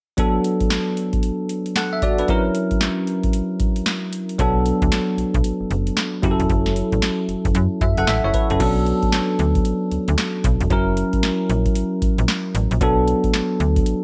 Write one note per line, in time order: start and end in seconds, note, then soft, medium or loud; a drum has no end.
0.17 2.24 F#3 medium
0.17 2.24 B3 medium
0.17 1.73 D4 medium
0.17 1.74 A4 medium
0.17 kick loud
0.17 closed hi-hat medium
0.44 closed hi-hat medium
0.61 kick medium
0.61 closed hi-hat soft
0.71 snare loud
0.71 clap medium
0.71 closed hi-hat medium
0.97 closed hi-hat medium
1.13 kick medium
1.13 closed hi-hat medium
1.23 closed hi-hat medium
1.49 closed hi-hat medium
1.66 closed hi-hat soft
1.76 1.92 A4 medium
1.76 1.92 F#5 medium
1.76 snare loud
1.76 clap medium
1.76 closed hi-hat medium
1.93 2.02 E5 medium
2.02 2.18 F#4 medium
2.02 2.18 D5 medium
2.02 kick medium
2.02 closed hi-hat medium
2.18 2.44 D4 medium
2.18 2.44 B4 medium
2.18 closed hi-hat medium
2.28 4.35 F#3 medium
2.28 4.35 C#4 medium
2.28 4.35 E4 medium
2.28 4.36 A#4 medium
2.28 kick loud
2.28 closed hi-hat medium
2.55 closed hi-hat medium
2.71 kick medium
2.71 closed hi-hat medium
2.81 snare loud
2.81 clap medium
2.81 closed hi-hat medium
3.07 closed hi-hat medium
3.23 kick medium
3.23 closed hi-hat medium
3.33 closed hi-hat medium
3.60 kick medium
3.60 closed hi-hat medium
3.76 closed hi-hat medium
3.86 snare loud
3.86 clap medium
3.86 closed hi-hat medium
4.13 closed hi-hat medium
4.29 closed hi-hat soft
4.39 4.72 B1 medium
4.39 6.19 F#3 medium
4.39 6.20 B3 medium
4.39 6.20 D4 medium
4.39 6.20 A4 medium
4.39 kick loud
4.39 closed hi-hat medium
4.66 closed hi-hat medium
4.82 4.89 D2 medium
4.82 kick medium
4.82 closed hi-hat medium
4.92 snare loud
4.92 clap medium
4.92 closed hi-hat medium
5.18 5.24 B1 soft
5.18 closed hi-hat medium
5.34 5.42 B1 medium
5.34 kick medium
5.34 closed hi-hat medium
5.44 closed hi-hat medium
5.61 5.65 F#1 soft
5.71 5.91 F#1 medium
5.71 closed hi-hat medium
5.87 closed hi-hat soft
5.97 snare loud
5.97 clap medium
5.97 closed hi-hat medium
6.22 6.36 F#1 loud
6.22 8.29 F#3 medium
6.22 7.78 C#4 medium
6.22 7.78 E4 medium
6.22 6.32 G4 medium
6.22 kick medium
6.22 closed hi-hat medium
6.31 7.82 A4 medium
6.40 6.47 E1 loud
6.40 closed hi-hat medium
6.50 6.82 F#1 loud
6.50 kick loud
6.50 closed hi-hat medium
6.66 snare medium
6.76 closed hi-hat medium
6.92 7.00 A1 medium
6.92 kick medium
6.92 closed hi-hat soft
7.02 snare loud
7.02 clap medium
7.02 closed hi-hat medium
7.29 7.35 F#1 soft
7.29 closed hi-hat medium
7.45 7.53 F#1 medium
7.45 kick medium
7.45 closed hi-hat soft
7.55 7.67 F#2 loud
7.55 closed hi-hat medium
7.81 7.94 F#2 medium
7.81 7.97 E5 medium
7.81 kick medium
7.81 closed hi-hat medium
7.97 8.05 F#1 medium
7.97 8.07 A4 medium
7.97 8.07 F#5 medium
7.97 closed hi-hat medium
8.07 8.20 A1 medium
8.07 8.23 E5 medium
8.07 snare loud
8.07 clap medium
8.07 closed hi-hat medium
8.24 8.31 F#1 medium
8.24 8.34 E4 medium
8.24 8.34 C#5 medium
8.34 8.50 B4 medium
8.34 kick loud
8.34 closed hi-hat medium
8.50 8.58 F#1 medium
8.50 8.76 C#4 soft
8.50 8.61 A4 medium
8.50 closed hi-hat medium
8.60 8.93 B1 loud
8.60 10.66 F#3 medium
8.60 10.67 B3 medium
8.60 10.67 D4 medium
8.60 10.68 A4 medium
8.60 kick loud
8.60 closed hi-hat medium
8.60 crash medium
8.86 closed hi-hat medium
9.03 kick medium
9.03 closed hi-hat soft
9.13 snare loud
9.13 clap medium
9.13 closed hi-hat medium
9.39 9.59 D2 medium
9.39 closed hi-hat medium
9.55 kick medium
9.55 closed hi-hat medium
9.65 closed hi-hat medium
9.91 9.98 D2 soft
9.91 closed hi-hat medium
10.08 10.16 D2 medium
10.08 closed hi-hat medium
10.18 snare loud
10.18 clap medium
10.18 closed hi-hat medium
10.44 10.57 B1 medium
10.44 kick loud
10.44 closed hi-hat medium
10.61 10.68 E1 medium
10.61 closed hi-hat medium
10.70 11.03 F#1 loud
10.70 12.77 F#3 medium
10.70 12.77 C#4 medium
10.70 12.78 E4 medium
10.70 12.78 A#4 medium
10.70 kick loud
10.70 closed hi-hat medium
10.97 closed hi-hat medium
11.13 kick medium
11.13 closed hi-hat medium
11.23 snare loud
11.23 clap medium
11.23 closed hi-hat medium
11.50 11.70 A#1 medium
11.50 closed hi-hat medium
11.66 kick medium
11.66 closed hi-hat medium
11.75 closed hi-hat medium
12.02 12.09 A#1 soft
12.02 kick medium
12.02 closed hi-hat medium
12.18 12.26 A#1 medium
12.18 closed hi-hat medium
12.28 snare loud
12.28 clap medium
12.28 closed hi-hat medium
12.55 12.67 A1 medium
12.55 closed hi-hat medium
12.71 12.79 A#1 loud
12.71 closed hi-hat medium
12.81 13.14 B1 loud
12.81 14.04 F#3 medium
12.81 14.04 B3 medium
12.81 14.04 D4 medium
12.81 14.04 A4 medium
12.81 kick loud
12.81 closed hi-hat medium
13.08 closed hi-hat medium
13.24 kick medium
13.24 closed hi-hat soft
13.34 snare loud
13.34 clap medium
13.34 closed hi-hat medium
13.60 13.80 D2 medium
13.60 closed hi-hat medium
13.76 kick medium
13.76 closed hi-hat medium
13.86 closed hi-hat medium